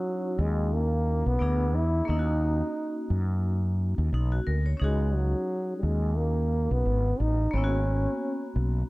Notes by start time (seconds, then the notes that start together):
Already playing: F#3 C#4 D#4 E4 F#4
0.39 D#2 G#3
0.73 A#3
1.26 B1 B3
1.39 D2 B3 D4 E4 G#4
1.75 E2 E4
2.05 D#2 A#3 C#4 D#4
2.10 D#4 E4
2.19 F#4
3.10 F#2
3.98 D#2
4.12 B1 D#4
4.32 F#4
4.47 D2 A#4
4.66 C#5
4.77 C#4 D#4
4.81 C#2 G#3 F#4 G#4
5.16 F#3
5.77 G3
5.83 D#2 G#3
6.17 A#3
6.71 B1 B3
6.86 G#1
7.20 A1 D#4
7.51 G#1 A#3 B3 C#4
7.56 C#4 E4
7.64 F#4
8.56 B1